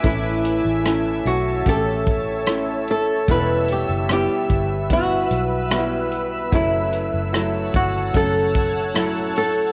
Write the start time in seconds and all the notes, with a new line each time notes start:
Already playing: E5
0.03 A1 A2 E3 A3 C#4 E4 C#5 A5 E6, kick, closed hi-hat
0.45 closed hi-hat
0.65 A1
0.84 A3 C#4 E4, cross-stick, closed hi-hat
1.25 B1 F#4, closed hi-hat
1.65 A1 A3 C#4 G4 A4, kick, closed hi-hat
2.07 kick, closed hi-hat
2.46 A3 C#4 E4, cross-stick, closed hi-hat
2.88 A4, closed hi-hat
3.28 E1 B2 G3 B3 E4 B4, kick, closed hi-hat
3.68 G4, closed hi-hat
3.89 F#1
4.09 G3 B3 E4 G4, cross-stick, closed hi-hat
4.50 G1, kick, closed hi-hat
4.90 G3 B3 E4 F#4, kick, closed hi-hat
5.31 B1, closed hi-hat
5.71 G3 B3 F#4, cross-stick, closed hi-hat
5.79 E4
6.12 closed hi-hat
6.52 F#1 C#3 F#3 A3 E4 C#5 F#5 A5, kick, closed hi-hat
6.93 closed hi-hat
7.14 F#1
7.33 F#3 A3 E4, cross-stick, closed hi-hat
7.74 G1 F#4, kick, closed hi-hat
8.13 F#1 F#3 A3 C#4 A4, kick, closed hi-hat
8.55 kick, closed hi-hat
8.94 F#3 A3 E4, cross-stick, closed hi-hat
9.36 A4, closed hi-hat